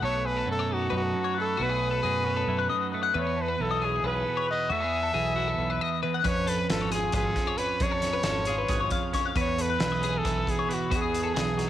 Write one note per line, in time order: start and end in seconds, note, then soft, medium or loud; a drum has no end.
0.02 0.43 B1 medium
0.02 1.14 B2 medium
0.02 1.37 A3 medium
0.02 0.25 A4 medium
0.02 0.27 C#5 loud
0.25 0.37 G#4 medium
0.25 0.47 B4 loud
0.37 0.59 A4 medium
0.46 0.87 F#2 medium
0.46 1.55 F#3 medium
0.51 0.75 A4 medium
0.59 0.69 C#5 medium
0.69 0.92 D#4 medium
0.69 0.90 A4 medium
0.73 0.93 F#4 medium
0.90 1.12 F#2 medium
0.90 1.64 D#4 medium
0.90 1.02 B4 medium
0.96 1.35 F#4 medium
1.02 1.25 A4 medium
1.14 1.55 F#2 medium
1.24 1.34 C#5 medium
1.34 1.59 A3 medium
1.34 1.57 B4 medium
1.40 1.64 A4 medium
1.57 1.99 B1 loud
1.57 2.71 B2 medium
1.57 1.70 F#4 medium
1.61 2.93 A3 medium
1.61 2.94 B4 medium
1.70 1.91 G#4 medium
1.91 2.02 A4 medium
2.03 2.44 F#2 medium
2.03 3.12 F#3 medium
2.03 2.24 G#4 medium
2.24 2.37 C#4 medium
2.24 2.36 F#4 medium
2.36 3.14 D#4 soft
2.36 2.58 A4 medium
2.48 2.68 F#2 medium
2.48 2.59 E4 medium
2.59 3.14 F#4 medium
2.59 2.69 B4 medium
2.69 3.11 F#2 medium
2.69 2.92 D#5 medium
2.92 3.14 A3 medium
2.92 3.02 B4 medium
3.03 3.14 F#5 medium
3.14 3.55 E2 loud
3.14 4.70 E2 medium
3.14 3.27 A3 medium
3.14 3.37 B4 medium
3.18 3.43 C#5 medium
3.27 4.48 B3 soft
3.37 3.48 A4 medium
3.41 3.63 B4 medium
3.48 3.70 B4 medium
3.60 3.99 B1 medium
3.60 5.14 E3 medium
3.60 3.86 A4 medium
3.71 3.81 D#5 medium
3.82 3.96 C#4 medium
3.82 4.04 G#4 medium
3.82 4.08 G#4 medium
3.96 4.71 D#4 medium
4.04 4.23 B1 loud
4.04 4.75 G#4 medium
4.04 4.15 B4 medium
4.04 4.49 B4 medium
4.15 4.37 A4 medium
4.28 4.68 B2 medium
4.37 4.47 C#5 medium
4.47 4.69 B4 medium
4.47 4.73 D#5 medium
4.52 4.69 B3 medium
4.70 5.10 E2 medium
4.70 6.03 E2 medium
4.70 4.84 A3 medium
4.70 4.81 F#4 medium
4.70 6.04 E5 loud
4.81 6.24 B3 soft
4.81 5.03 G#4 medium
5.03 5.14 A4 medium
5.14 5.54 B1 medium
5.14 6.25 E3 medium
5.14 5.36 G#4 medium
5.36 6.23 E4 medium
5.36 5.48 F#4 medium
5.48 5.70 A4 medium
5.58 5.78 B1 medium
5.70 5.81 B4 medium
5.81 6.02 D#5 medium
6.03 6.23 E2 medium
6.03 6.14 B4 medium
6.14 6.25 F#5 medium
6.23 7.35 F2 medium
6.23 6.65 F2 loud
6.23 7.57 C#4 medium
6.23 6.47 B4 medium
6.23 6.50 C#5 loud
6.23 kick loud
6.23 closed hi-hat medium
6.47 6.58 A4 medium
6.47 6.70 B4 medium
6.47 closed hi-hat medium
6.58 6.81 B4 medium
6.69 7.10 G#1 medium
6.69 7.78 F3 medium
6.69 6.91 A4 medium
6.69 snare loud
6.69 closed hi-hat medium
6.81 6.91 C#5 medium
6.92 7.14 F4 medium
6.92 7.14 G#4 medium
6.92 7.13 G#4 medium
6.92 snare soft
6.92 closed hi-hat medium
7.12 7.34 G#1 loud
7.12 7.78 F4 medium
7.12 7.59 G#4 medium
7.12 7.24 B4 medium
7.12 kick loud
7.12 closed hi-hat medium
7.24 7.47 A4 medium
7.36 7.78 F2 medium
7.36 kick medium
7.36 snare soft
7.36 closed hi-hat medium
7.47 7.57 C#5 medium
7.57 7.78 C#4 medium
7.57 7.80 B4 medium
7.57 7.84 B4 medium
7.57 closed hi-hat medium
7.80 8.90 F2 medium
7.80 8.21 F2 loud
7.80 9.12 C#4 medium
7.80 7.91 G#4 medium
7.80 9.15 C#5 loud
7.80 kick loud
7.80 closed hi-hat medium
7.91 8.13 A4 medium
8.02 snare soft
8.02 closed hi-hat medium
8.13 8.24 B4 medium
8.23 8.65 G#1 medium
8.23 9.34 F3 medium
8.23 8.47 A4 medium
8.23 snare loud
8.23 closed hi-hat loud
8.45 8.58 G#4 medium
8.45 closed hi-hat medium
8.49 9.34 F4 medium
8.58 8.80 B4 medium
8.68 8.89 G#1 loud
8.68 10.24 G#4 medium
8.68 kick loud
8.68 snare soft
8.68 closed hi-hat medium
8.80 8.91 C#5 medium
8.90 9.33 F2 medium
8.90 9.14 F5 medium
8.90 kick medium
8.90 closed hi-hat medium
9.13 9.33 C#4 medium
9.13 9.26 C#5 medium
9.13 kick medium
9.13 snare soft
9.13 closed hi-hat medium
9.26 9.36 F5 medium
9.36 9.76 E2 loud
9.36 10.89 E2 medium
9.36 10.68 B3 medium
9.36 9.59 B4 medium
9.36 9.63 C#5 loud
9.36 kick loud
9.36 closed hi-hat medium
9.58 9.69 A4 medium
9.58 10.19 B4 loud
9.58 closed hi-hat medium
9.70 9.92 B4 medium
9.78 10.21 B1 medium
9.78 11.34 E3 medium
9.78 snare loud
9.78 closed hi-hat medium
9.92 10.03 D#5 medium
10.01 10.13 C#4 medium
10.01 10.26 G#4 medium
10.01 closed hi-hat medium
10.13 10.91 D#4 medium
10.18 10.51 A4 loud
10.24 10.45 B1 medium
10.24 11.70 E4 medium
10.24 10.38 B4 medium
10.24 kick loud
10.24 snare soft
10.24 closed hi-hat medium
10.38 10.59 A4 medium
10.46 10.88 B2 medium
10.46 10.75 G#4 medium
10.46 kick medium
10.46 closed hi-hat medium
10.59 10.69 C#5 medium
10.68 10.90 B3 medium
10.68 10.91 B4 medium
10.68 closed hi-hat medium
10.73 10.98 F#4 medium
10.90 11.70 E2 medium
10.90 11.32 E2 medium
10.90 11.70 B3 medium
10.90 11.01 F#4 medium
10.90 kick loud
10.90 closed hi-hat medium
10.96 11.70 G#4 medium
11.02 11.23 G#4 medium
11.14 closed hi-hat medium
11.23 11.34 A4 medium
11.34 11.70 B1 medium
11.34 11.70 E3 medium
11.34 11.57 G#4 medium
11.34 snare loud
11.34 closed hi-hat medium
11.57 11.70 D#4 medium
11.57 11.68 F#4 medium
11.57 snare soft
11.57 closed hi-hat medium